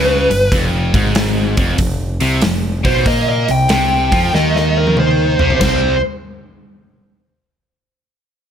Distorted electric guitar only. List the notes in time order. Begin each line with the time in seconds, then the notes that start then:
Already playing: C#3
0.31 G2
0.53 F2
0.95 G#2
1.57 F2
1.79 F2
2.21 C3
2.42 F2
2.84 B2
3.05 A#3
3.49 C3
3.69 C3
4.13 F3
4.34 D#3
5.40 C3
5.61 C3 G3 C4